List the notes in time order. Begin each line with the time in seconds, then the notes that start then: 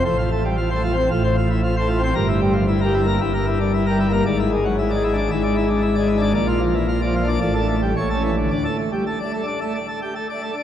0.05 A1 A2 C5
0.18 F4
0.32 A3
0.45 G3
0.57 F4
0.70 C5
0.75 A3
0.84 F4
0.93 C4
0.97 C5
1.11 A1 A2 F4
1.24 C5
1.37 F4
1.50 E4
1.64 F4
1.76 C5
1.80 A3
1.89 F4
1.98 C4
2.03 C5
2.15 G1 G2 A#4
2.28 E4
2.41 G3
2.53 F3
2.68 E4
2.81 A#4
2.85 G3
2.94 E4
3.03 A#3
3.08 A#4
3.20 G1 G2 E4
3.34 A#4
3.46 E4
3.60 D4
3.74 E4
3.86 A#4
3.91 G3
4.00 E4
4.09 A#3
4.13 A#4
4.26 G#1 G#2 D5
4.39 E4
4.52 G#3
4.65 F#3
4.78 E4
4.91 D5
4.96 G#3
5.03 E4
5.13 D4
5.18 D5
5.30 G#1 G#2 E4
5.43 D5
5.56 E4
5.70 D4
5.82 E4
5.95 D5
6.00 G#3
6.08 E4
6.17 D4
6.21 D5
6.34 A#1 A#2 D5
6.47 F4
6.61 F3
6.75 E3
6.88 F4
7.02 D5
7.06 F3
7.15 F4
7.24 D4
7.28 D5
7.41 A1 A2 D5
7.54 A4
7.60 D4
7.68 A3
7.82 G3
7.96 A1 A2 C#5
8.10 A4
8.14 C#4
8.24 E3
8.37 D3
8.51 D2 D3 D5
8.65 A4
8.78 A3
8.93 G3
9.07 A4
9.20 D5
9.25 A3
9.34 A4
9.43 D4
9.47 D5
9.61 A3 A4
9.75 D5
9.88 A4
10.02 G4
10.15 A4
10.30 D5
10.34 A3
10.43 A4
10.52 D4
10.57 D5